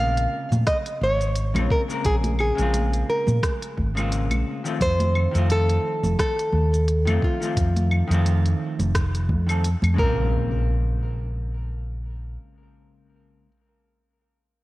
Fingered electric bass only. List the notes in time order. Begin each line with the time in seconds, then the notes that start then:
Already playing: A#1
0.52 A#2
1.01 G#1
1.55 A#1
2.05 A#1
2.59 A#1
3.28 A#2
3.78 G#1
4.31 A#1
4.81 F2
5.35 F2
6.03 F1
6.53 D#2
7.07 F2
7.57 F2
8.10 F2
8.79 F1
9.29 F2
9.82 F2
9.99 A#1